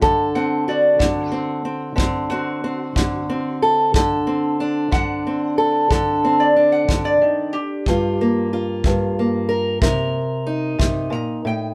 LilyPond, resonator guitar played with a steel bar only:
\new Staff \with { instrumentName = "Resonator guitar played with a steel bar" } { \time 12/8 \key d \phrygian \tempo 4. = 61 r8 fis''8 d''4 fis'4. fis'2 r8 | r4. fis''2~ fis''16 d''8 fis''8 d''8. g'8~ | g'4. r2. r8 bes''8 g''8 | }